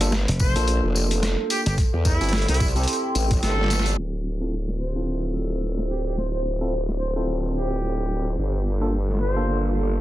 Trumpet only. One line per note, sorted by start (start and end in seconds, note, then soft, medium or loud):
0.40 0.83 C5 medium
1.51 1.61 G4 medium
1.66 1.74 G4 medium
2.05 2.45 E4 medium
2.49 2.67 E4 medium
3.43 3.98 A4 medium
4.80 5.24 C5 medium
5.90 6.00 G4 medium
6.06 6.14 G4 medium
6.18 6.28 C5 medium
6.33 6.41 C5 medium
7.01 7.11 C5 medium
7.16 7.24 C5 medium
7.56 8.33 G4 medium
9.21 9.64 C5 medium